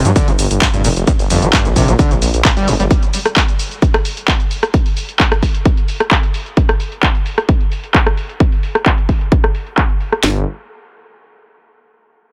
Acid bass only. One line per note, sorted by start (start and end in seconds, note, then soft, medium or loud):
0.05 0.11 G3 medium
0.16 0.29 D3 loud
0.28 0.31 C3 loud
0.62 0.68 G2 medium
0.74 0.83 G2 medium
0.84 0.88 A#2 loud
1.07 1.11 G2 medium
1.30 1.44 F2 loud
1.42 1.48 G3 medium
1.53 1.67 G2 medium
1.65 1.69 G3 medium
1.76 1.90 C3 medium
1.88 1.94 G3 medium
1.99 2.13 D3 loud
2.11 2.15 C3 loud
2.45 2.49 A#2 loud
2.57 2.69 G3 loud
2.68 2.74 G2 loud
2.80 2.83 G3 loud